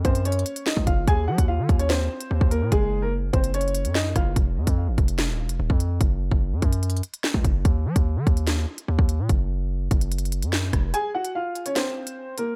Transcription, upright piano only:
0.05 0.21 C4 medium
0.05 0.21 C5 medium
0.25 0.64 C#4 medium
0.25 0.64 C#5 medium
0.66 0.83 D#4 medium
0.66 0.82 D#5 medium
0.87 1.03 F4 medium
0.87 1.02 F5 medium
1.08 1.24 G#4 medium
1.08 1.23 G#5 loud
1.28 1.44 F#4 medium
1.28 1.44 F#5 medium
1.48 1.78 F4 medium
1.48 1.77 F5 medium
1.79 1.88 C#4 medium
1.79 1.87 C#5 medium
1.90 2.48 C4 medium
1.90 2.48 C5 medium
2.51 2.67 A#3 medium
2.51 2.67 A#4 medium
2.71 3.01 G#3 medium
2.71 3.01 G#4 loud
3.02 3.11 A#3 medium
3.02 3.10 A#4 medium
3.33 3.49 C4 medium
3.33 3.49 C5 medium
3.54 3.93 C#4 medium
3.54 3.93 C#5 medium
3.95 4.11 D#4 medium
3.95 4.11 D#5 medium
4.16 4.32 F4 medium
4.16 4.31 F5 medium
10.94 11.10 G#4 medium
10.94 11.09 G#5 loud
11.15 11.31 F#4 medium
11.15 11.30 F#5 medium
11.35 11.64 F4 medium
11.35 11.64 F5 medium
11.66 11.74 C#4 medium
11.66 11.74 C#5 medium
11.76 12.34 C4 medium
11.76 12.34 C5 medium
12.38 12.54 A#3 medium
12.38 12.54 A#4 medium

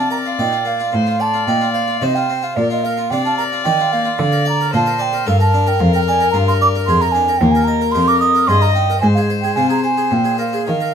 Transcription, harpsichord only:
0.00 0.35 C3 soft
0.00 0.13 F4 soft
0.11 0.26 A#4 soft
0.25 0.40 F4 soft
0.39 0.89 A#2 soft
0.39 0.53 D#4 soft
0.53 0.67 F4 soft
0.65 0.80 A#3 soft
0.80 0.93 F4 soft
0.92 1.43 A2 soft
1.07 1.21 F4 soft
1.20 1.35 C5 soft
1.34 1.48 F4 soft
1.48 1.98 A#2 soft
1.48 1.62 D#4 soft
1.61 1.75 F4 soft
1.74 1.89 C5 soft
1.88 2.02 F4 soft
2.01 2.53 C3 soft
2.01 2.15 D#4 soft
2.16 2.30 F4 soft
2.30 2.44 C4 soft
2.43 2.57 F4 soft
2.57 3.08 A#2 soft
2.70 2.85 F4 soft
2.85 2.99 A#4 soft
2.97 3.12 F4 soft
3.12 3.62 C3 soft
3.12 3.26 D4 soft
3.25 3.39 F4 soft
3.39 3.53 A#4 soft
3.52 3.66 F4 soft
3.65 4.16 D#3 soft
3.65 3.79 D#4 soft
3.80 3.94 F4 soft
3.93 4.07 A#3 soft
4.05 4.19 F4 soft
4.18 4.69 D3 soft
4.32 4.47 A#4 soft
4.45 4.60 D5 soft
4.61 4.75 A#4 soft
4.73 5.23 A#2 medium
4.73 4.88 F4 soft
4.86 5.01 A#4 soft
4.99 5.14 D5 soft
5.13 5.28 A#4 soft
5.26 5.76 G2 soft
5.26 5.41 A4 soft
5.40 5.55 A#4 soft
5.54 5.68 D4 soft
5.67 5.80 A#4 soft
5.79 6.29 F2 soft
5.93 6.08 A#4 soft
6.08 6.22 D5 soft
6.20 6.34 A#4 medium
6.34 6.83 G2 soft
6.34 6.48 F4 soft
6.48 6.62 A#4 soft
6.61 6.75 D5 soft
6.75 6.89 A#4 soft
6.88 7.37 F2 soft
6.88 7.01 G#4 soft
7.02 7.15 A#4 soft
7.15 7.28 D4 soft
7.28 7.41 A#4 soft
7.42 7.91 D#2 soft
7.55 7.69 A#4 soft
7.67 7.82 D#5 soft
7.81 7.95 A#4 soft
7.95 8.45 F2 medium
7.95 8.09 G4 soft
8.08 8.22 A#4 soft
8.21 8.35 D#5 soft
8.35 8.49 A#4 soft
8.49 8.99 G2 soft
8.49 8.62 G#4 soft
8.61 8.76 A#4 soft
8.75 8.90 D#4 soft
8.90 9.03 A#4 soft
9.03 9.53 G#2 soft
9.17 9.31 G#4 soft
9.30 9.44 C5 soft
9.44 9.58 G#4 soft
9.56 10.08 C3 medium
9.56 9.71 F4 soft
9.70 9.84 G#4 soft
9.84 9.98 C5 soft
9.97 10.12 G#4 soft
10.11 10.64 A#2 soft
10.24 10.40 G#4 soft
10.38 10.54 A#4 soft
10.53 10.68 G#4 soft
10.67 10.94 D#3 soft
10.81 10.94 A#4 soft

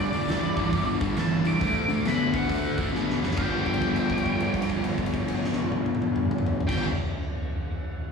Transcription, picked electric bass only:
0.14 0.26 G1 medium
0.30 0.52 G1 medium
0.57 0.70 G1 medium
0.73 0.96 G1 medium
1.01 1.14 G1 medium
1.18 1.40 G1 medium
1.46 1.58 C2 medium
1.61 1.84 D2 medium
1.90 2.02 D2 medium
2.06 2.28 D2 medium
2.33 2.46 D2 medium
2.49 2.72 D2 medium
2.78 2.91 D2 medium
2.92 3.16 D2 medium
3.22 3.35 F#1 medium
3.38 6.58 G1 medium
6.69 6.84 G1 medium

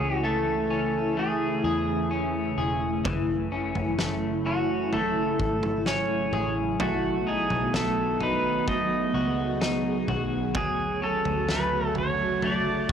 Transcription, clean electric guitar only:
0.00 3.03 E3 medium
0.00 0.23 A3 medium
0.00 0.70 C#4 medium
0.24 1.17 A3 medium
0.70 2.10 C#4 medium
1.17 3.98 A3 medium
1.64 2.57 G#4 medium
2.11 3.52 C#4 medium
2.58 4.02 G#4 medium
3.05 6.80 E3 medium
3.52 4.44 C#4 medium
3.99 4.92 A3 medium
4.46 5.85 C#4 medium
4.93 6.80 A3 medium
5.86 6.90 C#4 medium
6.33 6.89 G#4 medium
6.80 7.73 A3 medium
7.27 8.19 D#4 medium
7.73 8.67 A3 medium
8.21 9.60 D#4 medium
8.67 11.49 A3 medium
9.14 10.08 F#4 medium
9.61 10.64 D#4 medium
10.08 12.89 F#4 medium
10.55 12.92 F#3 medium
11.02 12.92 C#4 medium
11.49 12.42 A3 medium
12.42 12.92 A3 medium

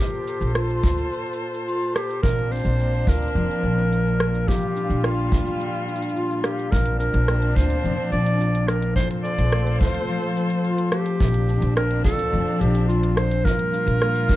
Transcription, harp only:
2.23 4.46 A#2 medium
2.51 3.63 C4 medium
2.79 4.19 A#3 medium
3.07 3.91 F4 medium
3.35 7.84 F3 medium
3.63 6.63 C4 medium
3.91 5.31 F4 medium
4.19 5.03 A#3 medium
4.47 6.70 A#2 medium
4.75 5.87 D4 medium
5.03 6.44 A#3 medium
5.31 6.15 F4 medium
5.60 6.77 G3 medium
5.88 6.99 D4 medium
6.16 7.56 F4 medium
6.44 11.91 A#3 medium
6.72 8.95 A#2 medium
7.00 8.11 D4 medium
7.28 8.68 C4 medium
7.56 8.39 F4 medium
7.84 10.08 F3 medium
8.12 10.92 D4 medium
8.40 9.80 F4 medium
8.68 9.24 C4 medium
8.96 11.19 A#2 medium
9.24 10.36 C4 medium
9.52 10.91 A3 medium
9.80 10.63 F4 medium
10.08 12.32 F3 medium
10.36 11.75 C4 medium
10.64 12.03 F4 medium
10.92 13.51 A3 medium
11.20 13.43 A#2 medium
11.48 12.60 D4 medium
11.76 13.16 C4 medium
12.04 12.88 F4 medium
12.32 14.36 F3 medium
12.60 13.72 D4 medium
12.88 14.28 F4 medium
13.16 14.36 C4 medium
13.45 14.36 A#2 medium
13.72 14.36 D4 medium
14.01 14.36 A#3 medium
14.29 14.36 F4 medium

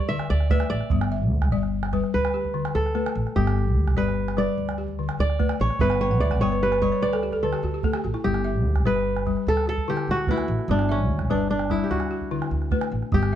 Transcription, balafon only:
0.00 0.51 G4 medium
0.10 0.51 D3 medium
0.51 0.92 A3 medium
0.51 1.12 B4 medium
0.92 1.32 G3 medium
1.12 1.73 E5 medium
1.52 1.92 G3 medium
1.52 2.14 D5 medium
1.93 2.14 G3 medium
1.93 2.34 B4 medium
2.34 2.95 G4 medium
2.54 2.95 D3 medium
2.95 3.36 A3 medium
2.95 3.56 B4 medium
3.36 3.77 G3 medium
3.97 4.36 G3 medium
3.97 4.58 D5 medium
4.37 4.58 G3 medium
4.37 4.78 B4 medium
4.78 5.40 G4 medium
4.99 5.40 D3 medium
5.39 5.80 A3 medium
5.39 6.01 B4 medium
5.81 6.21 G3 medium
5.81 6.00 E5 medium
5.91 6.10 F#5 medium
6.01 6.20 G5 medium
6.11 6.30 F#5 medium
6.21 6.40 E5 medium
6.32 6.51 F#5 medium
6.42 6.81 G3 medium
6.42 6.61 G5 medium
6.52 6.71 B4 medium
6.62 6.81 G4 medium
6.73 6.91 B4 medium
6.82 7.03 G3 medium
6.82 7.01 D5 medium
6.92 7.11 C#5 medium
7.02 7.22 B4 medium
7.13 7.32 A4 medium
7.23 7.42 G4 medium
7.33 7.52 A4 medium
7.43 7.84 D3 medium
7.43 7.62 B4 medium
7.54 7.73 G4 medium
7.64 7.83 F#4 medium
7.74 7.93 G4 medium
7.84 8.25 A3 medium
7.84 8.03 A4 medium
7.94 8.13 G4 medium
8.04 8.23 F#4 medium
8.14 8.33 E4 medium
8.24 8.65 G3 medium
8.44 9.06 E5 medium
8.85 9.26 G3 medium
8.85 9.47 B4 medium
9.27 9.47 G3 medium
9.67 10.28 F#4 medium
9.88 10.28 D3 medium
9.88 10.49 E4 medium
10.28 10.69 A3 medium
10.28 10.89 B4 medium
10.69 11.10 G3 medium
10.89 11.50 E5 medium
11.30 11.69 G3 medium
11.30 11.91 B4 medium
11.70 11.91 G3 medium
12.11 12.72 F#4 medium
12.31 12.72 D3 medium
12.31 12.92 E4 medium
12.72 13.12 A3 medium
12.72 13.33 B4 medium
13.12 13.35 G3 medium

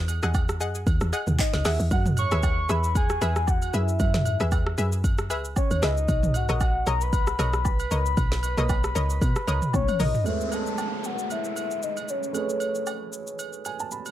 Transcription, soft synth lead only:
1.40 1.64 D#5 loud
1.67 1.78 E5 medium
1.93 2.04 F#5 loud
2.19 2.72 C#6 loud
2.71 2.96 B5 loud
2.97 3.21 G#5 loud
3.23 3.51 G#5 medium
3.49 3.77 F#5 loud
3.75 4.53 E5 medium
5.58 5.81 C#5 loud
5.84 6.37 D#5 loud
6.36 6.87 F#5 loud
6.88 7.04 A#5 loud
7.02 9.74 B5 loud
9.75 9.99 C#5 medium
10.01 10.25 D#5 loud
10.53 11.07 A5 loud
11.06 11.31 F#5 loud
11.32 11.55 E5 medium
11.58 11.81 E5 medium
11.84 12.02 D#5 medium
12.03 12.11 D#5 medium
12.10 12.87 C#5 medium

